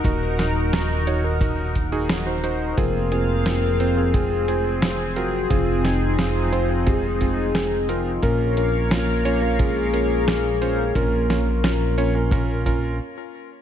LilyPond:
<<
  \new Staff \with { instrumentName = "Analog synth pad" } { \time 4/4 \key bes \minor \tempo 4 = 88 << { <ees' bes'>1 | <c' aes'>1~ | <c' aes'>1 | <bes bes' f''>1~ |
<bes bes' f''>2. r4 | } \\ { ges'1 | f''1 | ees'1 | des''1~ |
des''2. r4 | } >> }
  \new Staff \with { instrumentName = "Soft synth lead" } { \time 4/4 \key bes \minor r1 | bes'2 aes'4 r8 ges'8 | f'8 ees'8 f'4 aes'4. f'8 | bes'2 aes'2 |
bes'2. r4 | }
  \new Staff \with { instrumentName = "Electric grand piano" } { \time 4/4 \key bes \minor <ees' ges' bes'>8 <ees' ges' bes'>8 <ees' ges' bes'>8 <ees' ges' des''>16 <ees' ges' bes'>16 <ees' ges' bes'>8 r16 <ees' ges' aes'>8 <ees' ges' c''>16 <ees' ges' c''>8 | <c' f' aes'>8 <c' f' aes'>8 <c' f' aes'>8 <c' f' c''>16 <c' f' aes'>16 <c' f' aes'>8 <c' f' aes'>8 <c' f' aes'>16 r16 <c' f' bes'>16 r16 | <c' f' aes'>8 <c' f' aes'>8 <c' f' aes'>8 <c' f' c''>16 <c' f' aes'>16 <c' f' aes'>8 <c' f' aes'>8 <c' f' aes'>16 r16 <c' f' bes'>16 r16 | <des' f' bes'>8 <des' f' bes'>8 <des' f' bes'>8 <des' f' des''>16 <des' f' bes'>16 <des' f' bes'>8 <des' f' bes'>8 <des' f' bes'>16 r16 <des' f' c''>16 r16 |
<des' f' bes'>8 <des' f' bes'>8 <des' f' bes'>8 <des' f' des''>16 <des' f' bes'>16 <des' f' bes'>8 <des' f' bes'>8 r4 | }
  \new Staff \with { instrumentName = "Analog synth bass" } { \clef bass \time 4/4 \key bes \minor ees,,1 | f,,1 | f,,1 | bes,,1 |
bes,,2. r4 | }
  \new DrumStaff \with { instrumentName = "Drums" } \drummode { \time 4/4 <hh bd>8 <hh sn>8 <hh sn>8 hh8 <hh bd>8 <hh bd>8 <hh sn>8 hh8 | <hh bd>8 hh8 <hh sn>8 hh8 <hh bd>8 hh8 <hh sn>8 hh8 | <hh bd>8 <hh sn>8 <hh sn>8 hh8 <hh bd>8 <hh bd>8 <hh sn>8 hh8 | <hh bd>8 hh8 <hh sn>8 hh8 <hh bd>8 hh8 <hh sn>8 hh8 |
<hh bd>8 <hh sn>8 <hh sn>8 hh8 <hh bd>8 <hh bd>8 r4 | }
>>